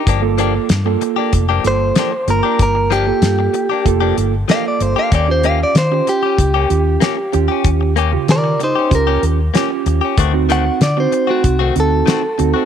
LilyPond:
<<
  \new Staff \with { instrumentName = "Clean electric guitar" } { \time 4/4 \key g \minor \tempo 4 = 95 r2 r8 c''4 bes'8 | bes'8 g'2 r8 f''16 d''16 c''16 f''16 | d''16 c''16 f''16 d''16 c''8 g'2~ g'8~ | g'8 r8 <bes' d''>8 <ees' c''>8 bes'8 r4. |
r8 fis''8 d''16 c''8 fis'8. a'4. | }
  \new Staff \with { instrumentName = "Reed electric piano" } { \time 4/4 \key g \minor r16 <bes f' a'>8. r16 <bes f' a'>4 r16 <bes f' a'>8. r16 <bes f' bes'>8~ | <bes f' bes'>8 r16 <bes f' a'>4 r16 <bes f' a'>8. r16 <bes f' a'>4 | r16 <des' f' g'>8. r16 <des' f' g'>4 r16 <des' f' g'>8. r16 <des' f' g'>8~ | <des' f' g'>8 r16 <des f' g'>4 r16 <des' f' g'>8. r16 <des' f' g'>4 |
r16 <c' ees' fis'>8. r16 <c' ees' fis'>4 r16 <c' ees' fis'>8. r16 <c' ees' fis'>8 | }
  \new Staff \with { instrumentName = "Clean electric guitar" } { \time 4/4 \key g \minor <f bes d' g'>16 r16 <f bes d' g'>16 r4 <bes d' g'>16 r16 <f bes d' g'>16 r8 <f bes d' g'>16 r8 <bes d' g'>16 | r8 <f bes d' g'>16 r4 <bes d' g'>16 r16 <f bes d' g'>16 r8 <f bes d' g'>16 r8 <bes d' g'>16 | <bes des' g'>16 r16 <bes des' g'>16 r4 <des' g'>16 r16 <bes des' g'>16 r8 <bes des' g'>16 r8 <des' g'>16 | r8 <bes des' g'>16 r4 <des' g'>16 r16 <bes des' g'>16 r8 <bes des' g'>16 r8 <des' g'>16 |
<ees a c' fis'>16 r16 <ees a c' fis'>16 r4 <a c' fis'>16 r16 <ees a c' fis'>16 r8 <ees a c' fis'>16 r8 <a c' fis'>16 | }
  \new Staff \with { instrumentName = "Fingered electric bass" } { \clef bass \time 4/4 \key g \minor g,,4 g,8 r8 f,,8 g,,8 r8 g,,16 r16 | g,,4 g,8 r8 f,,8 g,,8 r8 g,,16 r16 | ees,4 ees8 r8 des,8 ees,8 r8 ees,16 r16 | ees,4 ees8 r8 des,8 ees,8 r8 ees,16 r16 |
d,4 d8 r8 c,8 d,8 r8 d,16 r16 | }
  \new DrumStaff \with { instrumentName = "Drums" } \drummode { \time 4/4 <hh bd>8 hh8 <hh sn>8 hh8 <hh bd>8 hh8 <hh sn>8 hh8 | <hh bd>8 hh8 <hh sn>8 hh8 <hh bd>8 hh8 <hh sn>8 hh8 | <hh bd>8 hh8 <hh sn>8 hh8 <hh bd>8 hh8 <hh sn>8 hh8 | <hh bd>8 hh8 <hh sn>8 hh8 <hh bd>8 hh8 <hh sn>8 hh8 |
<hh bd>8 hh8 <hh sn>8 hh8 <hh bd>8 hh8 <hh sn>8 hh8 | }
>>